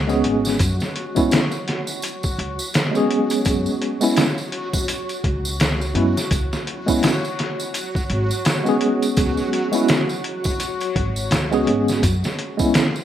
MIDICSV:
0, 0, Header, 1, 5, 480
1, 0, Start_track
1, 0, Key_signature, 4, "minor"
1, 0, Tempo, 714286
1, 404, Time_signature, 4, 2, 24, 8
1, 8764, End_track
2, 0, Start_track
2, 0, Title_t, "Synth texture"
2, 0, Program_c, 0, 99
2, 0, Note_on_c, 0, 54, 82
2, 0, Note_on_c, 0, 66, 85
2, 8764, Note_off_c, 0, 54, 0
2, 8764, Note_off_c, 0, 66, 0
2, 8764, End_track
3, 0, Start_track
3, 0, Title_t, "Tine electric piano"
3, 0, Program_c, 1, 4
3, 50, Note_on_c, 1, 56, 79
3, 57, Note_on_c, 1, 59, 73
3, 59, Note_on_c, 1, 61, 76
3, 67, Note_on_c, 1, 68, 85
3, 385, Note_off_c, 1, 56, 0
3, 388, Note_off_c, 1, 59, 0
3, 389, Note_off_c, 1, 61, 0
3, 393, Note_off_c, 1, 68, 0
3, 772, Note_on_c, 1, 56, 69
3, 779, Note_on_c, 1, 59, 71
3, 783, Note_on_c, 1, 61, 69
3, 789, Note_on_c, 1, 64, 80
3, 940, Note_off_c, 1, 56, 0
3, 944, Note_off_c, 1, 59, 0
3, 946, Note_off_c, 1, 61, 0
3, 949, Note_off_c, 1, 64, 0
3, 1958, Note_on_c, 1, 56, 84
3, 1971, Note_on_c, 1, 59, 73
3, 1984, Note_on_c, 1, 61, 77
3, 1993, Note_on_c, 1, 68, 89
3, 2657, Note_off_c, 1, 56, 0
3, 2664, Note_off_c, 1, 59, 0
3, 2671, Note_off_c, 1, 61, 0
3, 2675, Note_off_c, 1, 68, 0
3, 2691, Note_on_c, 1, 56, 74
3, 2696, Note_on_c, 1, 59, 67
3, 2705, Note_on_c, 1, 61, 68
3, 2710, Note_on_c, 1, 64, 80
3, 2859, Note_off_c, 1, 56, 0
3, 2862, Note_off_c, 1, 59, 0
3, 2867, Note_off_c, 1, 61, 0
3, 2869, Note_off_c, 1, 64, 0
3, 3994, Note_on_c, 1, 56, 64
3, 4000, Note_on_c, 1, 59, 61
3, 4008, Note_on_c, 1, 61, 64
3, 4010, Note_on_c, 1, 64, 71
3, 4126, Note_off_c, 1, 56, 0
3, 4129, Note_off_c, 1, 59, 0
3, 4133, Note_off_c, 1, 61, 0
3, 4134, Note_off_c, 1, 64, 0
3, 4612, Note_on_c, 1, 56, 71
3, 4617, Note_on_c, 1, 59, 67
3, 4624, Note_on_c, 1, 61, 67
3, 4632, Note_on_c, 1, 64, 77
3, 4780, Note_off_c, 1, 56, 0
3, 4783, Note_off_c, 1, 59, 0
3, 4786, Note_off_c, 1, 61, 0
3, 4790, Note_off_c, 1, 64, 0
3, 5801, Note_on_c, 1, 56, 76
3, 5815, Note_on_c, 1, 59, 76
3, 5825, Note_on_c, 1, 61, 71
3, 5837, Note_on_c, 1, 68, 89
3, 6499, Note_off_c, 1, 56, 0
3, 6506, Note_off_c, 1, 59, 0
3, 6511, Note_off_c, 1, 61, 0
3, 6517, Note_off_c, 1, 68, 0
3, 6531, Note_on_c, 1, 56, 75
3, 6538, Note_on_c, 1, 59, 69
3, 6547, Note_on_c, 1, 61, 69
3, 6551, Note_on_c, 1, 64, 82
3, 6700, Note_off_c, 1, 56, 0
3, 6703, Note_off_c, 1, 59, 0
3, 6708, Note_off_c, 1, 61, 0
3, 6709, Note_off_c, 1, 64, 0
3, 7737, Note_on_c, 1, 56, 84
3, 7743, Note_on_c, 1, 59, 75
3, 7747, Note_on_c, 1, 61, 73
3, 7756, Note_on_c, 1, 68, 89
3, 8068, Note_off_c, 1, 56, 0
3, 8071, Note_off_c, 1, 59, 0
3, 8073, Note_off_c, 1, 61, 0
3, 8078, Note_off_c, 1, 68, 0
3, 8448, Note_on_c, 1, 56, 80
3, 8454, Note_on_c, 1, 59, 66
3, 8462, Note_on_c, 1, 61, 66
3, 8469, Note_on_c, 1, 64, 80
3, 8618, Note_off_c, 1, 56, 0
3, 8621, Note_off_c, 1, 59, 0
3, 8625, Note_off_c, 1, 61, 0
3, 8629, Note_off_c, 1, 64, 0
3, 8764, End_track
4, 0, Start_track
4, 0, Title_t, "Upright bass"
4, 0, Program_c, 2, 32
4, 0, Note_on_c, 2, 37, 87
4, 140, Note_off_c, 2, 37, 0
4, 162, Note_on_c, 2, 32, 73
4, 379, Note_off_c, 2, 32, 0
4, 401, Note_on_c, 2, 42, 98
4, 526, Note_off_c, 2, 42, 0
4, 1603, Note_on_c, 2, 37, 90
4, 1727, Note_off_c, 2, 37, 0
4, 2323, Note_on_c, 2, 42, 93
4, 2447, Note_off_c, 2, 42, 0
4, 3520, Note_on_c, 2, 37, 91
4, 3983, Note_off_c, 2, 37, 0
4, 3997, Note_on_c, 2, 42, 92
4, 4124, Note_off_c, 2, 42, 0
4, 4241, Note_on_c, 2, 37, 94
4, 4366, Note_off_c, 2, 37, 0
4, 5443, Note_on_c, 2, 32, 90
4, 5568, Note_off_c, 2, 32, 0
4, 6164, Note_on_c, 2, 37, 91
4, 6288, Note_off_c, 2, 37, 0
4, 7363, Note_on_c, 2, 32, 78
4, 7579, Note_off_c, 2, 32, 0
4, 7601, Note_on_c, 2, 37, 83
4, 7819, Note_off_c, 2, 37, 0
4, 7839, Note_on_c, 2, 32, 76
4, 8057, Note_off_c, 2, 32, 0
4, 8082, Note_on_c, 2, 42, 98
4, 8207, Note_off_c, 2, 42, 0
4, 8764, End_track
5, 0, Start_track
5, 0, Title_t, "Drums"
5, 62, Note_on_c, 9, 54, 39
5, 130, Note_off_c, 9, 54, 0
5, 162, Note_on_c, 9, 42, 67
5, 229, Note_off_c, 9, 42, 0
5, 302, Note_on_c, 9, 54, 69
5, 312, Note_on_c, 9, 38, 33
5, 369, Note_off_c, 9, 54, 0
5, 379, Note_off_c, 9, 38, 0
5, 399, Note_on_c, 9, 42, 83
5, 402, Note_on_c, 9, 36, 98
5, 406, Note_on_c, 9, 54, 62
5, 467, Note_off_c, 9, 42, 0
5, 469, Note_off_c, 9, 36, 0
5, 473, Note_off_c, 9, 54, 0
5, 540, Note_on_c, 9, 54, 38
5, 551, Note_on_c, 9, 38, 44
5, 607, Note_off_c, 9, 54, 0
5, 618, Note_off_c, 9, 38, 0
5, 643, Note_on_c, 9, 42, 66
5, 710, Note_off_c, 9, 42, 0
5, 780, Note_on_c, 9, 54, 59
5, 784, Note_on_c, 9, 36, 88
5, 847, Note_off_c, 9, 54, 0
5, 851, Note_off_c, 9, 36, 0
5, 882, Note_on_c, 9, 54, 63
5, 888, Note_on_c, 9, 42, 82
5, 895, Note_on_c, 9, 38, 106
5, 949, Note_off_c, 9, 54, 0
5, 955, Note_off_c, 9, 42, 0
5, 962, Note_off_c, 9, 38, 0
5, 1018, Note_on_c, 9, 54, 39
5, 1085, Note_off_c, 9, 54, 0
5, 1126, Note_on_c, 9, 42, 62
5, 1133, Note_on_c, 9, 38, 53
5, 1193, Note_off_c, 9, 42, 0
5, 1201, Note_off_c, 9, 38, 0
5, 1257, Note_on_c, 9, 54, 70
5, 1324, Note_off_c, 9, 54, 0
5, 1359, Note_on_c, 9, 54, 60
5, 1367, Note_on_c, 9, 42, 87
5, 1426, Note_off_c, 9, 54, 0
5, 1435, Note_off_c, 9, 42, 0
5, 1500, Note_on_c, 9, 54, 43
5, 1505, Note_on_c, 9, 36, 81
5, 1567, Note_off_c, 9, 54, 0
5, 1572, Note_off_c, 9, 36, 0
5, 1607, Note_on_c, 9, 42, 63
5, 1674, Note_off_c, 9, 42, 0
5, 1740, Note_on_c, 9, 54, 80
5, 1807, Note_off_c, 9, 54, 0
5, 1843, Note_on_c, 9, 42, 79
5, 1843, Note_on_c, 9, 54, 64
5, 1850, Note_on_c, 9, 38, 110
5, 1910, Note_off_c, 9, 42, 0
5, 1910, Note_off_c, 9, 54, 0
5, 1917, Note_off_c, 9, 38, 0
5, 1983, Note_on_c, 9, 54, 41
5, 2050, Note_off_c, 9, 54, 0
5, 2086, Note_on_c, 9, 42, 63
5, 2154, Note_off_c, 9, 42, 0
5, 2217, Note_on_c, 9, 54, 66
5, 2225, Note_on_c, 9, 42, 41
5, 2284, Note_off_c, 9, 54, 0
5, 2292, Note_off_c, 9, 42, 0
5, 2317, Note_on_c, 9, 54, 59
5, 2322, Note_on_c, 9, 36, 94
5, 2322, Note_on_c, 9, 42, 84
5, 2384, Note_off_c, 9, 54, 0
5, 2389, Note_off_c, 9, 36, 0
5, 2389, Note_off_c, 9, 42, 0
5, 2459, Note_on_c, 9, 54, 41
5, 2526, Note_off_c, 9, 54, 0
5, 2564, Note_on_c, 9, 42, 63
5, 2631, Note_off_c, 9, 42, 0
5, 2695, Note_on_c, 9, 54, 74
5, 2762, Note_off_c, 9, 54, 0
5, 2799, Note_on_c, 9, 42, 80
5, 2800, Note_on_c, 9, 54, 61
5, 2807, Note_on_c, 9, 38, 105
5, 2866, Note_off_c, 9, 42, 0
5, 2868, Note_off_c, 9, 54, 0
5, 2874, Note_off_c, 9, 38, 0
5, 2942, Note_on_c, 9, 54, 36
5, 3010, Note_off_c, 9, 54, 0
5, 3040, Note_on_c, 9, 42, 64
5, 3107, Note_off_c, 9, 42, 0
5, 3181, Note_on_c, 9, 36, 87
5, 3181, Note_on_c, 9, 54, 77
5, 3248, Note_off_c, 9, 36, 0
5, 3249, Note_off_c, 9, 54, 0
5, 3280, Note_on_c, 9, 42, 91
5, 3286, Note_on_c, 9, 54, 59
5, 3347, Note_off_c, 9, 42, 0
5, 3353, Note_off_c, 9, 54, 0
5, 3422, Note_on_c, 9, 42, 41
5, 3422, Note_on_c, 9, 54, 39
5, 3489, Note_off_c, 9, 42, 0
5, 3489, Note_off_c, 9, 54, 0
5, 3521, Note_on_c, 9, 36, 85
5, 3522, Note_on_c, 9, 42, 58
5, 3588, Note_off_c, 9, 36, 0
5, 3589, Note_off_c, 9, 42, 0
5, 3662, Note_on_c, 9, 54, 75
5, 3729, Note_off_c, 9, 54, 0
5, 3762, Note_on_c, 9, 42, 84
5, 3762, Note_on_c, 9, 54, 62
5, 3770, Note_on_c, 9, 38, 107
5, 3829, Note_off_c, 9, 42, 0
5, 3829, Note_off_c, 9, 54, 0
5, 3837, Note_off_c, 9, 38, 0
5, 3907, Note_on_c, 9, 54, 37
5, 3974, Note_off_c, 9, 54, 0
5, 4000, Note_on_c, 9, 42, 68
5, 4067, Note_off_c, 9, 42, 0
5, 4148, Note_on_c, 9, 38, 33
5, 4149, Note_on_c, 9, 54, 80
5, 4215, Note_off_c, 9, 38, 0
5, 4216, Note_off_c, 9, 54, 0
5, 4239, Note_on_c, 9, 42, 80
5, 4241, Note_on_c, 9, 36, 105
5, 4248, Note_on_c, 9, 54, 62
5, 4307, Note_off_c, 9, 42, 0
5, 4308, Note_off_c, 9, 36, 0
5, 4316, Note_off_c, 9, 54, 0
5, 4386, Note_on_c, 9, 54, 37
5, 4388, Note_on_c, 9, 38, 46
5, 4454, Note_off_c, 9, 54, 0
5, 4455, Note_off_c, 9, 38, 0
5, 4483, Note_on_c, 9, 42, 68
5, 4551, Note_off_c, 9, 42, 0
5, 4622, Note_on_c, 9, 54, 70
5, 4623, Note_on_c, 9, 36, 85
5, 4690, Note_off_c, 9, 54, 0
5, 4691, Note_off_c, 9, 36, 0
5, 4722, Note_on_c, 9, 42, 78
5, 4726, Note_on_c, 9, 54, 59
5, 4730, Note_on_c, 9, 38, 102
5, 4790, Note_off_c, 9, 42, 0
5, 4794, Note_off_c, 9, 54, 0
5, 4797, Note_off_c, 9, 38, 0
5, 4869, Note_on_c, 9, 54, 37
5, 4936, Note_off_c, 9, 54, 0
5, 4965, Note_on_c, 9, 42, 66
5, 4973, Note_on_c, 9, 38, 51
5, 5032, Note_off_c, 9, 42, 0
5, 5040, Note_off_c, 9, 38, 0
5, 5105, Note_on_c, 9, 54, 67
5, 5172, Note_off_c, 9, 54, 0
5, 5203, Note_on_c, 9, 42, 93
5, 5206, Note_on_c, 9, 54, 62
5, 5270, Note_off_c, 9, 42, 0
5, 5274, Note_off_c, 9, 54, 0
5, 5343, Note_on_c, 9, 36, 88
5, 5352, Note_on_c, 9, 54, 40
5, 5410, Note_off_c, 9, 36, 0
5, 5419, Note_off_c, 9, 54, 0
5, 5441, Note_on_c, 9, 42, 59
5, 5508, Note_off_c, 9, 42, 0
5, 5583, Note_on_c, 9, 54, 67
5, 5650, Note_off_c, 9, 54, 0
5, 5678, Note_on_c, 9, 54, 57
5, 5679, Note_on_c, 9, 42, 82
5, 5686, Note_on_c, 9, 38, 110
5, 5745, Note_off_c, 9, 54, 0
5, 5746, Note_off_c, 9, 42, 0
5, 5753, Note_off_c, 9, 38, 0
5, 5820, Note_on_c, 9, 54, 38
5, 5888, Note_off_c, 9, 54, 0
5, 5918, Note_on_c, 9, 42, 63
5, 5985, Note_off_c, 9, 42, 0
5, 6064, Note_on_c, 9, 42, 37
5, 6065, Note_on_c, 9, 54, 66
5, 6131, Note_off_c, 9, 42, 0
5, 6132, Note_off_c, 9, 54, 0
5, 6159, Note_on_c, 9, 54, 60
5, 6162, Note_on_c, 9, 42, 84
5, 6163, Note_on_c, 9, 36, 106
5, 6227, Note_off_c, 9, 54, 0
5, 6229, Note_off_c, 9, 42, 0
5, 6231, Note_off_c, 9, 36, 0
5, 6299, Note_on_c, 9, 54, 31
5, 6366, Note_off_c, 9, 54, 0
5, 6405, Note_on_c, 9, 42, 67
5, 6472, Note_off_c, 9, 42, 0
5, 6537, Note_on_c, 9, 54, 70
5, 6604, Note_off_c, 9, 54, 0
5, 6642, Note_on_c, 9, 54, 57
5, 6644, Note_on_c, 9, 42, 83
5, 6651, Note_on_c, 9, 38, 108
5, 6709, Note_off_c, 9, 54, 0
5, 6711, Note_off_c, 9, 42, 0
5, 6718, Note_off_c, 9, 38, 0
5, 6783, Note_on_c, 9, 54, 35
5, 6850, Note_off_c, 9, 54, 0
5, 6883, Note_on_c, 9, 42, 63
5, 6950, Note_off_c, 9, 42, 0
5, 7016, Note_on_c, 9, 54, 61
5, 7023, Note_on_c, 9, 36, 90
5, 7083, Note_off_c, 9, 54, 0
5, 7091, Note_off_c, 9, 36, 0
5, 7121, Note_on_c, 9, 42, 83
5, 7122, Note_on_c, 9, 54, 60
5, 7188, Note_off_c, 9, 42, 0
5, 7189, Note_off_c, 9, 54, 0
5, 7260, Note_on_c, 9, 54, 34
5, 7266, Note_on_c, 9, 42, 42
5, 7327, Note_off_c, 9, 54, 0
5, 7333, Note_off_c, 9, 42, 0
5, 7363, Note_on_c, 9, 36, 89
5, 7364, Note_on_c, 9, 42, 61
5, 7431, Note_off_c, 9, 36, 0
5, 7432, Note_off_c, 9, 42, 0
5, 7500, Note_on_c, 9, 54, 63
5, 7567, Note_off_c, 9, 54, 0
5, 7600, Note_on_c, 9, 42, 83
5, 7605, Note_on_c, 9, 54, 52
5, 7608, Note_on_c, 9, 38, 108
5, 7668, Note_off_c, 9, 42, 0
5, 7673, Note_off_c, 9, 54, 0
5, 7675, Note_off_c, 9, 38, 0
5, 7745, Note_on_c, 9, 54, 35
5, 7812, Note_off_c, 9, 54, 0
5, 7844, Note_on_c, 9, 42, 62
5, 7911, Note_off_c, 9, 42, 0
5, 7985, Note_on_c, 9, 54, 62
5, 7993, Note_on_c, 9, 38, 34
5, 8053, Note_off_c, 9, 54, 0
5, 8060, Note_off_c, 9, 38, 0
5, 8084, Note_on_c, 9, 36, 95
5, 8084, Note_on_c, 9, 42, 81
5, 8087, Note_on_c, 9, 54, 58
5, 8151, Note_off_c, 9, 36, 0
5, 8152, Note_off_c, 9, 42, 0
5, 8154, Note_off_c, 9, 54, 0
5, 8224, Note_on_c, 9, 54, 40
5, 8233, Note_on_c, 9, 38, 49
5, 8292, Note_off_c, 9, 54, 0
5, 8300, Note_off_c, 9, 38, 0
5, 8323, Note_on_c, 9, 42, 64
5, 8390, Note_off_c, 9, 42, 0
5, 8461, Note_on_c, 9, 54, 62
5, 8464, Note_on_c, 9, 36, 86
5, 8528, Note_off_c, 9, 54, 0
5, 8531, Note_off_c, 9, 36, 0
5, 8562, Note_on_c, 9, 42, 80
5, 8569, Note_on_c, 9, 38, 108
5, 8569, Note_on_c, 9, 54, 58
5, 8629, Note_off_c, 9, 42, 0
5, 8636, Note_off_c, 9, 38, 0
5, 8636, Note_off_c, 9, 54, 0
5, 8706, Note_on_c, 9, 54, 37
5, 8764, Note_off_c, 9, 54, 0
5, 8764, End_track
0, 0, End_of_file